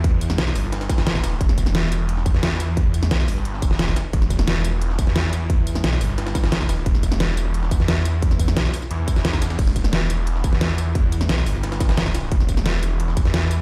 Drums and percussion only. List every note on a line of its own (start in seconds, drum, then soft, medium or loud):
0.04 kick loud
0.04 closed hi-hat medium
0.21 closed hi-hat medium
0.21 tambourine medium
0.30 snare medium
0.30 closed hi-hat soft
0.38 snare loud
0.38 closed hi-hat medium
0.55 closed hi-hat medium
0.55 open hi-hat medium
0.55 tambourine medium
0.64 snare soft
0.72 snare loud
0.72 closed hi-hat medium
0.81 snare loud
0.81 closed hi-hat medium
0.89 kick loud
0.89 snare loud
0.89 closed hi-hat medium
0.89 tambourine medium
0.98 snare loud
0.98 snare soft
0.98 closed hi-hat medium
1.06 snare loud
1.06 closed hi-hat medium
1.06 open hi-hat medium
1.15 kick medium
1.15 snare soft
1.24 snare loud
1.24 closed hi-hat loud
1.24 open hi-hat medium
1.24 tambourine medium
1.32 snare soft
1.41 kick loud
1.41 closed hi-hat medium
1.49 snare soft
1.58 kick medium
1.58 closed hi-hat medium
1.58 tambourine medium
1.66 snare medium
1.75 snare loud
1.75 closed hi-hat medium
1.92 closed hi-hat medium
1.92 tambourine medium
2.09 closed hi-hat medium
2.17 snare medium
2.26 kick loud
2.26 closed hi-hat medium
2.26 tambourine medium
2.34 snare soft
2.34 closed hi-hat soft
2.43 snare loud
2.43 closed hi-hat medium
2.51 closed hi-hat soft
2.60 closed hi-hat medium
2.60 tambourine medium
2.77 kick loud
2.77 closed hi-hat medium
2.94 closed hi-hat medium
2.94 tambourine medium
3.03 snare medium
3.03 closed hi-hat soft
3.11 snare loud
3.11 closed hi-hat medium
3.28 closed hi-hat medium
3.28 open hi-hat medium
3.28 tambourine medium
3.37 snare soft
3.45 closed hi-hat medium
3.54 snare soft
3.62 kick loud
3.62 closed hi-hat medium
3.62 tambourine medium
3.71 snare soft
3.79 snare loud
3.79 closed hi-hat medium
3.79 open hi-hat medium
3.88 kick medium
3.88 snare soft
3.96 snare loud
3.96 closed hi-hat medium
3.96 tambourine medium
4.13 kick loud
4.13 closed hi-hat medium
4.22 snare soft
4.30 kick medium
4.30 closed hi-hat medium
4.30 tambourine medium
4.39 snare medium
4.47 snare loud
4.47 closed hi-hat medium
4.64 closed hi-hat medium
4.64 tambourine medium
4.82 closed hi-hat medium
4.90 snare medium
4.99 kick loud
4.99 closed hi-hat medium
4.99 tambourine medium
5.07 snare soft
5.07 closed hi-hat soft
5.16 snare loud
5.16 closed hi-hat medium
5.24 closed hi-hat soft
5.33 closed hi-hat medium
5.33 tambourine medium
5.50 kick loud
5.50 closed hi-hat medium
5.67 closed hi-hat medium
5.67 tambourine medium
5.75 snare medium
5.75 closed hi-hat soft
5.84 snare loud
5.84 closed hi-hat medium
6.01 closed hi-hat medium
6.01 open hi-hat medium
6.01 tambourine medium
6.09 snare soft
6.18 snare loud
6.18 closed hi-hat medium
6.26 snare loud
6.26 closed hi-hat medium
6.35 kick loud
6.35 snare loud
6.35 closed hi-hat medium
6.35 tambourine medium
6.44 snare loud
6.44 snare soft
6.44 closed hi-hat medium
6.52 snare loud
6.52 closed hi-hat medium
6.52 open hi-hat medium
6.61 kick medium
6.61 snare soft
6.69 snare loud
6.69 closed hi-hat loud
6.69 open hi-hat medium
6.69 tambourine medium
6.78 snare soft
6.86 kick loud
6.86 closed hi-hat medium
6.95 snare soft
7.03 kick medium
7.03 closed hi-hat medium
7.03 tambourine medium
7.12 snare medium
7.20 snare loud
7.20 closed hi-hat medium
7.37 closed hi-hat medium
7.37 closed hi-hat loud
7.37 tambourine medium
7.54 closed hi-hat medium
7.63 snare medium
7.71 kick loud
7.71 closed hi-hat medium
7.71 tambourine medium
7.80 snare soft
7.80 closed hi-hat soft
7.88 snare loud
7.88 closed hi-hat medium
7.97 closed hi-hat soft
8.05 closed hi-hat medium
8.05 closed hi-hat loud
8.05 tambourine medium
8.22 kick loud
8.22 closed hi-hat medium
8.31 snare soft
8.39 kick medium
8.39 closed hi-hat loud
8.39 closed hi-hat medium
8.39 tambourine medium
8.48 snare medium
8.48 closed hi-hat soft
8.57 snare loud
8.57 closed hi-hat medium
8.74 closed hi-hat medium
8.74 open hi-hat medium
8.74 tambourine medium
8.82 snare soft
8.82 tambourine soft
8.91 closed hi-hat medium
9.08 kick loud
9.08 closed hi-hat medium
9.08 closed hi-hat loud
9.08 tambourine medium
9.16 snare soft
9.16 tambourine soft
9.25 snare loud
9.25 closed hi-hat medium
9.33 kick medium
9.33 snare loud
9.33 closed hi-hat medium
9.42 snare loud
9.42 closed hi-hat loud
9.42 closed hi-hat medium
9.42 tambourine medium
9.50 snare loud
9.50 closed hi-hat medium
9.59 kick loud
9.59 closed hi-hat medium
9.59 crash medium
9.67 snare soft
9.76 kick medium
9.76 closed hi-hat medium
9.76 tambourine medium
9.84 snare medium
9.93 snare loud
9.93 closed hi-hat medium
10.10 closed hi-hat loud
10.10 closed hi-hat medium
10.10 tambourine medium
10.27 closed hi-hat medium
10.36 snare medium
10.44 kick loud
10.44 closed hi-hat loud
10.44 closed hi-hat medium
10.44 tambourine medium
10.53 snare soft
10.53 closed hi-hat soft
10.61 snare loud
10.61 closed hi-hat medium
10.70 closed hi-hat soft
10.78 closed hi-hat medium
10.78 closed hi-hat loud
10.78 tambourine medium
10.95 kick loud
10.95 closed hi-hat medium
11.12 closed hi-hat medium
11.12 tambourine medium
11.21 snare medium
11.21 closed hi-hat soft
11.29 snare loud
11.29 closed hi-hat medium
11.46 closed hi-hat medium
11.46 open hi-hat medium
11.46 tambourine medium
11.55 snare soft
11.63 snare loud
11.63 closed hi-hat medium
11.72 snare loud
11.72 closed hi-hat medium
11.80 kick loud
11.80 snare loud
11.80 closed hi-hat loud
11.80 closed hi-hat medium
11.80 tambourine medium
11.89 snare soft
11.89 snare loud
11.89 closed hi-hat medium
11.97 snare loud
11.97 closed hi-hat medium
11.97 open hi-hat medium
12.06 kick medium
12.06 snare soft
12.15 snare loud
12.15 closed hi-hat loud
12.15 open hi-hat medium
12.15 tambourine medium
12.23 snare soft
12.32 kick loud
12.32 closed hi-hat medium
12.40 snare soft
12.49 kick medium
12.49 closed hi-hat medium
12.49 tambourine medium
12.57 snare medium
12.66 snare loud
12.66 closed hi-hat medium
12.83 closed hi-hat medium
12.83 tambourine medium
13.00 closed hi-hat medium
13.08 snare medium
13.17 kick loud
13.17 closed hi-hat medium
13.17 tambourine medium
13.25 snare soft
13.25 closed hi-hat soft
13.34 snare loud
13.34 closed hi-hat medium
13.42 closed hi-hat soft
13.51 closed hi-hat medium
13.51 tambourine medium